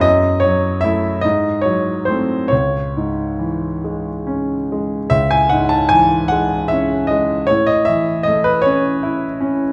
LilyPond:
<<
  \new Staff \with { instrumentName = "Grand piano" } { \time 12/8 \key cis \minor \tempo 4. = 50 dis''8 cis''8 e''8 dis''8 cis''8 bis'8 cis''4. r4. | e''16 gis''16 fis''16 a''16 gis''8 fis''8 e''8 dis''8 cis''16 dis''16 e''8 dis''16 b'16 cis''4. | }
  \new Staff \with { instrumentName = "Grand piano" } { \clef bass \time 12/8 \key cis \minor fis,8 fis8 <a e'>8 gis,8 fis8 <a bis>8 cis,8 gis,8 e8 gis8 cis'8 gis8 | cis,8 gis,8 e8 gis8 cis'8 gis8 a,8 e8 a8 cis'8 e'8 cis'8 | }
>>